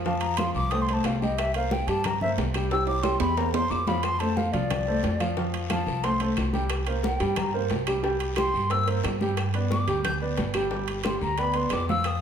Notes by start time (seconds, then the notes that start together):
Already playing: F2
0.05 F3 F4 F5 A5, high bongo, high conga, long guiro
0.21 A#5, high conga, high timbale
0.37 F3 F4 F5 C6, high bongo, high conga, high timbale, short guiro, claves
0.54 C2 D6, high bongo, high conga, short guiro
0.71 A3 A4 C5 D#6, high bongo, high conga, high timbale, long guiro
0.82 C6
0.89 A3 A4 C5, high bongo, high conga, high timbale
0.94 A5
1.04 C2 F5, high bongo, low bongo, high conga, high timbale, low timbale, short guiro, claves
1.22 G3 G4 D#5 G5, high bongo, high conga, short guiro
1.38 E5, high bongo, high conga, high timbale, long guiro, claves
1.54 A#3 A#4 C5 F5, high bongo, high conga, high timbale
1.71 G5, high bongo, high conga, short guiro
1.87 G2 G3 G4 G5 A5, high timbale, short guiro
2.04 A#5, high bongo, high conga, low conga, high timbale, long guiro, claves
2.21 A#3 A#4 C5 E5, high bongo, high conga, low conga
2.37 C2, high bongo, low bongo, high conga, high timbale, low timbale, short guiro
2.54 G3 G4 G5, high bongo, high conga, high timbale, short guiro, claves
2.71 G3 G4 G5 E6, high bongo, high conga, high timbale, long guiro
2.87 D6, high conga, high timbale
3.03 G3 G4 G5 C6, high bongo, high conga, high timbale, short guiro, claves
3.20 E2 B5, high bongo, high conga, low timbale, short guiro
3.37 A#3 A#4 C5 A#5, high bongo, high conga, low timbale, long guiro
3.54 A#3 A#4 C5 C6, high bongo, high conga, low timbale
3.70 F2 D6, low bongo, high conga, low timbale, short guiro, claves
3.87 F3 F4 F5 B5, low bongo, high conga, low timbale, short guiro
4.03 C6, high bongo, high conga, high timbale, long guiro, claves
4.19 A3 A4 C5 A5, high bongo, high conga, high timbale
4.37 F5, high bongo, high conga, short guiro
4.53 C2 F3 F4 D5 F5, high timbale, short guiro
4.70 high bongo, high conga, low conga, high timbale, long guiro, claves
4.87 A3 A4 C5, high bongo, high conga
5.03 F2, high bongo, low bongo, high conga, high timbale, short guiro
5.20 F3 F4 F5, high bongo, high conga, high timbale, short guiro, claves
5.37 F3 F4 F5, high bongo, high conga, long guiro
5.53 high conga, high timbale
5.70 F3 F4 F5 A5, high bongo, high conga, high timbale, short guiro, claves
5.86 C2, high bongo, high conga, short guiro
6.03 A3 A4 C5 C6, high bongo, high conga, high timbale, long guiro
6.20 A3 A4 C5, high bongo, high conga, high timbale
6.37 C2, high bongo, low bongo, high conga, high timbale, short guiro, claves
6.53 G3 G4 G5, high bongo, high conga, short guiro
6.70 high bongo, high conga, high timbale, long guiro, claves
6.87 A#3 A#4 C5, high bongo, high conga, high timbale
7.03 G5, high bongo, high conga, short guiro
7.20 G2 G3 G4 G5, high timbale, short guiro
7.36 A#5, high bongo, high conga, low conga, high timbale, long guiro, claves
7.54 A#3 A#4 C5, high bongo, high conga
7.70 C2, high bongo, low bongo, high conga, high timbale, short guiro
7.87 G3 G4 G5, high bongo, high conga, high timbale, short guiro, claves
8.03 G3 G4 G5, high bongo, high conga, long guiro
8.20 high conga, high timbale
8.36 G3 G4 G5 C6, high bongo, high conga, high timbale, short guiro, claves
8.54 G2, high bongo, high conga, short guiro
8.70 A#3 A#4 C5 E6, high bongo, high conga, high timbale, long guiro
8.87 A#3 A#4 C5, high bongo, high conga, high timbale
9.03 G2, high bongo, low bongo, high conga, high timbale, low timbale, short guiro, claves
9.20 G3 G4 G5, high bongo, high conga, short guiro
9.37 high bongo, high conga, high timbale, long guiro, claves
9.54 B3 B4 D5, high bongo, high conga, high timbale
9.70 D6, high bongo, high conga, short guiro
9.87 D2 G3 G4 G5, high timbale, short guiro
10.04 G6, high bongo, high conga, low conga, high timbale, long guiro, claves
10.21 B3 B4 D5, high bongo, high conga
10.37 G1, high bongo, low bongo, high conga, high timbale, short guiro
10.54 G3 G4 G5, high bongo, high conga, high timbale, short guiro, claves
10.71 G3 G4 G5, high bongo, high conga, long guiro
10.88 high conga, high timbale
11.04 G3 G4 G5 C6, high bongo, high conga, high timbale, short guiro, claves
11.21 D2 A#5, high bongo, high conga, short guiro
11.38 B3 B4 D5 B5, high bongo, high conga, high timbale, long guiro
11.54 B3 B4 D5 C6, high bongo, high conga, high timbale
11.70 F2 D6, high bongo, low bongo, high conga, high timbale, low timbale, short guiro, claves
11.89 F3 F4 F5 E6, high bongo, high conga, short guiro
12.04 D#6, high bongo, high conga, high timbale, long guiro, claves